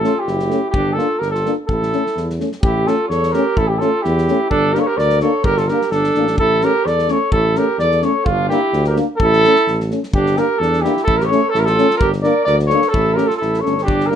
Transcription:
Already playing: trumpet A4
0.03 euphonium A3 C#4, alto saxophone F4, snare
0.19 trumpet G4
0.26 tuba F#1, alto saxophone E4, snare
0.39 snare
0.48 euphonium A3 C#4, snare
0.70 tuba G1, trumpet G4, kick
0.75 alto saxophone D4
0.93 euphonium A#3, trumpet A4
0.98 euphonium D4, alto saxophone F4, snare
1.19 tuba G1, alto saxophone G4, trumpet A#4, snare
1.31 alto saxophone F4, trumpet A4, snare
1.45 euphonium A#3 D4, snare
1.67 tuba A1, alto saxophone E4, trumpet A4, kick
1.83 snare
1.92 euphonium A3 C#4, snare
2.06 snare
2.16 tuba E2, snare
2.30 snare
2.39 euphonium A3 C#4, snare
2.52 snare
2.61 tuba A1, alto saxophone E4, trumpet G4, kick
2.85 euphonium A3 C#4, alto saxophone F4, trumpet A4, snare
3.09 tuba E2, alto saxophone A4, trumpet C#5, snare
3.23 snare
3.32 euphonium A3 C#4, alto saxophone G4, trumpet A#4, snare
3.57 tuba A1, alto saxophone E4, trumpet A4, kick
3.68 alto saxophone E4, trumpet G4
3.79 euphonium A3 C#4, alto saxophone F4, trumpet A4, snare
4.02 tuba E2, alto saxophone E4, trumpet G4, snare
4.18 snare
4.28 euphonium A3 C#4, snare
4.50 tuba G1, alto saxophone D4, trumpet A4, kick
4.74 euphonium A#3 D4, alto saxophone G4, trumpet A#4, snare
4.80 alto saxophone A4, trumpet C#5
4.87 alto saxophone G4, trumpet A#4
4.97 tuba D2, alto saxophone A#4, trumpet D5, snare
5.09 snare
5.20 euphonium A#3 D4, alto saxophone A4, trumpet C#5, snare
5.44 tuba G1, alto saxophone G4, trumpet A#4, kick
5.57 alto saxophone F4, trumpet A4, snare
5.68 euphonium A#3 D4, alto saxophone G4, trumpet A#4, snare
5.81 snare
5.90 tuba G1, alto saxophone D4, trumpet A4, snare
6.04 snare
6.15 tuba A1, euphonium A#3 D4, snare
6.27 snare
6.38 tuba A1, alto saxophone E4, trumpet A4, kick
6.61 euphonium A3 C#4, alto saxophone G4, trumpet A#4, snare
6.85 tuba E2, alto saxophone A4, trumpet D5, snare
6.99 snare
7.08 euphonium A3 C#4, alto saxophone A4, trumpet C#5, snare
7.32 tuba A1, alto saxophone E4, trumpet A4, kick
7.55 euphonium A3 C#4, alto saxophone G4, trumpet A#4, snare
7.78 tuba E2, trumpet D5, snare
7.83 alto saxophone A4
7.91 snare
8.02 euphonium A3 C#4, trumpet C#5, snare
8.06 alto saxophone A4
8.25 tuba G1, trumpet F4, kick
8.29 alto saxophone D4
8.49 euphonium A#3 D4, alto saxophone E4, trumpet G4, snare
8.72 tuba D2, snare
8.84 trumpet A#4, snare
8.89 alto saxophone G4
8.96 euphonium A#3 D4, snare
9.18 tuba A1, trumpet A4, kick
9.22 alto saxophone E4
9.33 snare
9.44 euphonium A3 C#4, snare
9.56 snare
9.67 tuba A1, snare
9.80 snare
9.90 euphonium A3 C#4, snare
10.03 snare
10.12 tuba G1, alto saxophone D4, trumpet G4, kick
10.26 snare
10.36 euphonium A#3 D4, alto saxophone G4, trumpet A#4, snare
10.59 tuba E2, alto saxophone D4, trumpet A4, snare
10.73 snare
10.82 euphonium A#3 D4, alto saxophone E4, trumpet G4, snare
10.97 snare
11.04 tuba A1, alto saxophone E4, trumpet A4
11.08 kick
11.17 trumpet A#4, snare
11.21 alto saxophone G4, trumpet C#5
11.31 euphonium A3 C#4, alto saxophone A4, snare
11.49 trumpet A4
11.54 tuba A1, alto saxophone E4, snare
11.59 trumpet A#4
11.65 alto saxophone F4 G4, trumpet A4, snare
11.77 euphonium A3 C#4, snare
11.90 snare
11.97 alto saxophone G4, trumpet A#4, kick
12.02 tuba G1
12.13 snare
12.22 euphonium A#3 D4, alto saxophone A#4, trumpet D5, snare
12.45 tuba D2, alto saxophone A#4, trumpet D5, snare
12.59 snare
12.67 alto saxophone A4, trumpet C#5, snare
12.71 euphonium A#3 D4
12.82 snare
12.89 trumpet A4
12.94 tuba A1, alto saxophone E4, kick
13.14 euphonium C#4, alto saxophone G4, trumpet A#4, snare
13.19 euphonium A3
13.27 alto saxophone F4, trumpet A4, snare
13.37 alto saxophone E4, trumpet A4
13.41 tuba A1, snare
13.54 snare
13.60 alto saxophone A4, trumpet C#5
13.64 tuba G1, euphonium A3 C#4, snare
13.78 snare
13.83 alto saxophone D4, trumpet G4
13.88 tuba G1, kick
14.00 snare
14.06 euphonium A#3, alto saxophone G4, trumpet A#4
14.11 euphonium D4, snare

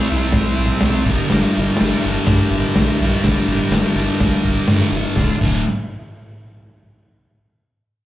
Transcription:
Already playing: distorted electric guitar C3 G3, transistor combo organ E4 G4 C5
0.09 sub bass C2, distorted electric guitar C4
0.14 distorted electric guitar G3
0.32 sub bass C2, kick, snare, open hi-hat
0.58 sub bass A#1
0.81 sub bass C2, distorted electric guitar C3 G3, snare, open hi-hat
0.86 distorted electric guitar C4
1.04 sub bass G1, distorted electric guitar D3 G3, transistor combo organ D4 G4 A#4, kick
1.10 distorted electric guitar G2
1.30 sub bass G1, distorted electric guitar G2 D3, snare, open hi-hat
1.35 distorted electric guitar G3
1.55 sub bass G1, distorted electric guitar G3
1.59 distorted electric guitar D3
1.77 distorted electric guitar G2, snare, open hi-hat
1.81 sub bass G1, distorted electric guitar D3 G3
2.02 sub bass G1, distorted electric guitar G3
2.07 distorted electric guitar D3
2.27 sub bass G2, kick, snare, open hi-hat
2.51 sub bass G1
2.75 sub bass A#1, distorted electric guitar G2 D3, snare, open hi-hat
2.80 distorted electric guitar G3
3.00 sub bass A#1, distorted electric guitar G3
3.05 distorted electric guitar D3
3.24 sub bass G1, distorted electric guitar G2 D3, kick, snare, open hi-hat
3.28 distorted electric guitar G3
3.48 sub bass G1, distorted electric guitar G3
3.53 distorted electric guitar D3
3.70 sub bass F1, distorted electric guitar G2, snare, open hi-hat
3.75 distorted electric guitar D3 G3
3.95 sub bass G1, distorted electric guitar G3
4.01 distorted electric guitar D3
4.20 sub bass G1, kick, snare, open hi-hat
4.45 sub bass F1, kick
4.67 sub bass G2, distorted electric guitar G2 D3, snare, open hi-hat
4.73 distorted electric guitar G3
4.92 sub bass F1, distorted electric guitar G3
4.97 distorted electric guitar D3
5.16 sub bass D1, distorted electric guitar D2 A2 D3, transistor combo organ D4 F4 A4, kick, snare
5.41 sub bass D1, distorted electric guitar D2 A2 D3, kick, crash

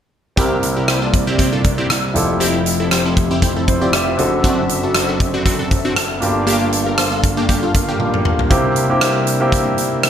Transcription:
0.36 grand piano C2 C3 C4 E4 G4 A#4, analog synth pad C3 G3 A#3 E4 D5, analog polysynth C4 E4 G4, kick, closed hi-hat
0.63 closed hi-hat
0.77 analog polysynth E4 G4 A#4
0.88 analog polysynth E4 G4 C5, cross-stick, closed hi-hat
1.02 analog polysynth D4 F4 A4
1.13 kick, closed hi-hat
1.27 analog polysynth C4 E4 G4
1.38 analog polysynth C4 E4 G4, kick, closed hi-hat
1.52 analog polysynth D4 F4 A4
1.64 kick, closed hi-hat
1.78 analog polysynth C4 E4 G4
1.90 cross-stick, closed hi-hat
2.14 grand piano F1 F2 E4 F4 G4 A4, analog synth pad F2 F3 A3 G4 E5, closed hi-hat
2.40 analog polysynth C4 E4 G4, closed hi-hat
2.66 closed hi-hat
2.80 analog polysynth C4 E4 A4
2.91 analog polysynth G4 A4 C5, cross-stick, closed hi-hat
3.05 analog polysynth C4 E4 A4
3.17 kick, closed hi-hat
3.31 analog polysynth C4 E4 G4
3.42 analog polysynth C4 E4 G4, kick, closed hi-hat
3.56 analog polysynth C4 E4 A4
3.68 grand piano E4 C5, kick, closed hi-hat
3.81 analog polysynth C4 E4 G4, grand piano F4 D5
3.92 grand piano G4 E5, cross-stick, closed hi-hat
4.07 grand piano E4 C5
4.17 grand piano F#1 F#2 C4 D4 F#4 A4, analog synth pad F#2 F#3 C4 A4, closed hi-hat
4.44 analog polysynth C4 D4 F#4, kick, closed hi-hat
4.69 closed hi-hat
4.83 analog polysynth D4 F#4 A4
4.95 analog polysynth F#4 A4 C5, cross-stick, closed hi-hat
5.09 analog polysynth D4 F#4 A4
5.20 kick, closed hi-hat
5.34 analog polysynth C4 D4 F#4
5.45 analog polysynth C4 D4 F#4, kick, closed hi-hat
5.59 analog polysynth D4 F#4 A4
5.71 kick, closed hi-hat
5.85 analog polysynth C4 D4 F#4
5.96 cross-stick, closed hi-hat
6.20 grand piano G1 G2 A#3 D4 F4 G4, analog synth pad G2 G3 A#3 F5, closed hi-hat
6.47 analog polysynth A#3 D4 G4, closed hi-hat
6.72 closed hi-hat
6.86 analog polysynth F4 G4 A#4
6.98 analog polysynth F4 A4 C5, cross-stick, closed hi-hat
7.12 analog polysynth D4 F4 A4
7.23 kick, closed hi-hat
7.37 analog polysynth A#3 D4 G4
7.49 analog polysynth A#3 D4 G4, kick, closed hi-hat
7.63 analog polysynth D4 F4 A4
7.74 kick, closed hi-hat
7.88 analog polysynth A#3 D4 G4
7.99 grand piano A#3 D4 F4 G4, high tom
8.14 mid tom
8.25 mid tom
8.39 floor tom
8.50 analog synth pad C3 G3 A#3 D4 E5, grand piano C3 A#3 C4 E4 G4, kick, closed hi-hat
8.76 closed hi-hat
8.90 grand piano A#3 C4 E4 G4
9.01 cross-stick, closed hi-hat
9.27 closed hi-hat
9.40 grand piano A#3 C4 E4 G4
9.52 kick, closed hi-hat
9.78 closed hi-hat
10.03 cross-stick, closed hi-hat

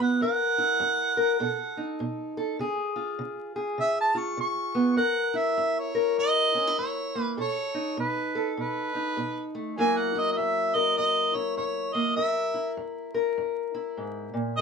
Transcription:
Already playing: steel-string acoustic guitar C#3 F4 B4
0.00 steel-string acoustic guitar B3, harmonica F#5
0.21 steel-string acoustic guitar F#2 A#4, harmonica F#5
0.58 steel-string acoustic guitar E4
0.80 steel-string acoustic guitar F#2
1.17 steel-string acoustic guitar A#4
1.40 steel-string acoustic guitar B2 A4
1.77 steel-string acoustic guitar D#4
2.00 steel-string acoustic guitar B2
2.37 steel-string acoustic guitar A4
2.59 steel-string acoustic guitar C#3 G#4
2.96 steel-string acoustic guitar F4
3.19 steel-string acoustic guitar C#3
3.56 steel-string acoustic guitar G#4
3.78 steel-string acoustic guitar C#3, harmonica E5
4.01 harmonica A5
4.15 steel-string acoustic guitar F4
4.19 harmonica C#6
4.37 steel-string acoustic guitar C#3, harmonica C#6
4.75 steel-string acoustic guitar B3
4.96 steel-string acoustic guitar F#2 A#4, harmonica F#5
5.34 steel-string acoustic guitar E4, harmonica E5
5.57 steel-string acoustic guitar F#2
5.79 harmonica C#5
5.95 steel-string acoustic guitar A#4
6.18 steel-string acoustic guitar F#2, harmonica D#5
6.55 steel-string acoustic guitar C#4
6.67 steel-string acoustic guitar E4
6.78 steel-string acoustic guitar F#2, harmonica C#5
7.15 steel-string acoustic guitar A#3
7.22 harmonica B4
7.37 steel-string acoustic guitar B2 A4, harmonica C#5
7.74 steel-string acoustic guitar D#4
7.97 steel-string acoustic guitar B2, harmonica B4
8.35 steel-string acoustic guitar A4
8.57 steel-string acoustic guitar B2, harmonica B4
8.95 steel-string acoustic guitar D#4
9.17 steel-string acoustic guitar B2
9.55 steel-string acoustic guitar A3
9.78 steel-string acoustic guitar F#2 F#3 A#3 E4 A#4, harmonica G#5
9.97 harmonica F#5
10.15 steel-string acoustic guitar E4
10.19 harmonica D#5
10.32 harmonica D#5
10.37 steel-string acoustic guitar F#2, harmonica E5
10.75 steel-string acoustic guitar A#4, harmonica D#5
10.97 steel-string acoustic guitar F#2, harmonica D#5
11.35 steel-string acoustic guitar E4, harmonica C#5
11.57 steel-string acoustic guitar F#2, harmonica C#5
11.93 steel-string acoustic guitar A#3, harmonica D#5
12.17 steel-string acoustic guitar F#2 A#4, harmonica E5
12.54 steel-string acoustic guitar E4
12.77 steel-string acoustic guitar F#2
13.14 steel-string acoustic guitar A#4
13.38 steel-string acoustic guitar F#2
13.75 steel-string acoustic guitar E4
13.97 steel-string acoustic guitar G#2
14.34 steel-string acoustic guitar A#2
14.57 harmonica D#5

